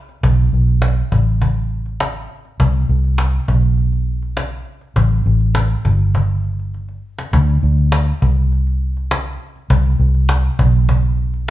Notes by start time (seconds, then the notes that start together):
0.09 cajon slap
0.23 B1, cajon bass
0.39 cajon slap
0.53 B1, cajon slap
0.68 cajon slap
0.82 cajon slap
0.97 cajon slap
1.12 A1, cajon bass
1.26 cajon slap
1.42 cajon bass
1.56 cajon slap
1.86 cajon slap
2.00 cajon slap
2.15 cajon slap
2.45 cajon slap
2.60 C2, cajon bass
2.75 cajon slap
2.89 C2, cajon slap
3.04 cajon slap
3.18 cajon slap
3.33 cajon slap
3.48 B1, cajon bass
3.62 cajon slap
3.78 cajon slap
3.92 cajon slap
4.22 cajon slap
4.37 cajon slap
4.51 cajon slap
4.81 cajon slap
4.96 A1, cajon bass
5.11 cajon slap
5.26 A1, cajon slap
5.41 cajon slap
5.55 cajon slap
5.70 cajon slap
5.85 G1, cajon bass
5.99 cajon slap
6.15 cajon bass
6.29 cajon slap
6.45 cajon slap
6.59 cajon slap
6.74 cajon slap
6.88 cajon slap
7.19 cajon slap
7.33 D2, cajon bass
7.49 cajon slap
7.63 D2, cajon slap
7.78 cajon slap
7.92 cajon slap
8.08 cajon slap
8.22 C2, cajon bass
8.37 cajon slap
8.52 cajon slap
8.67 cajon slap
8.97 cajon slap
9.11 cajon slap
9.26 cajon slap
9.56 cajon slap
9.70 C2, cajon bass
9.86 cajon slap
10.00 C2, cajon slap
10.14 cajon slap
10.29 cajon slap
10.44 cajon slap
10.59 B1, cajon bass
10.73 cajon slap
10.89 cajon bass
11.03 cajon slap
11.34 cajon slap